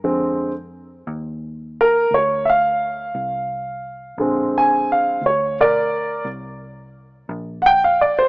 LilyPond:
<<
  \new Staff \with { instrumentName = "Grand piano" } { \time 12/8 \key bes \mixolydian \tempo 4. = 58 r2 r8 bes'8 des''8 <e'' f''>2~ <e'' f''>8~ | <e'' f''>8 aes''8 f''8 des''8 <bes' d''>4 r2 <ges'' g''>16 f''16 d''16 c''16 | }
  \new Staff \with { instrumentName = "Grand piano" } { \clef bass \time 12/8 \key bes \mixolydian <d aes c'>8 r1 r4. | <d aes c'>4. r1 r8 | }
  \new Staff \with { instrumentName = "Fingered electric bass" } { \clef bass \time 12/8 \key bes \mixolydian f,4. ees,4. d,4. c,4. | bes,,4. d,4. c,4. bes,,4. | }
>>